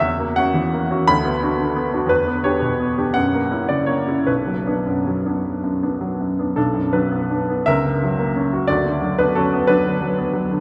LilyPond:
<<
  \new Staff \with { instrumentName = "Grand piano" } { \time 6/8 \key b \minor \tempo 4. = 57 e''8 fis''4 b''4. | b'8 cis''4 fis''8. d''16 cis''8 | b'4. r4. | <d' a'>8 <d' b'>4 <ais' e''>4. |
<fis' d''>8. <d' b'>16 <cis' a'>8 <d' b'>4. | }
  \new Staff \with { instrumentName = "Grand piano" } { \time 6/8 \key b \minor e,16 ais16 <cis' fis'>16 e16 ais16 <cis' fis'>16 d,16 b16 <d' fis'>16 d16 b16 <d' fis'>16 | e,16 b16 <d' g'>16 b,16 b16 <d' g'>16 fis,16 ais16 <cis' e'>16 cis16 ais16 <cis' e'>16 | b,,16 fis16 <b d'>16 fis,16 fis16 <b d'>8 fis,16 <b d'>16 fis16 fis,16 <b d'>16 | b,,16 fis,16 fis16 b16 d'16 b16 cis,16 cis16 fis16 ais16 cis'16 fis'16 |
d,16 d16 fis16 b16 fis16 b16 fis16 d16 fis16 b16 fis16 d16 | }
>>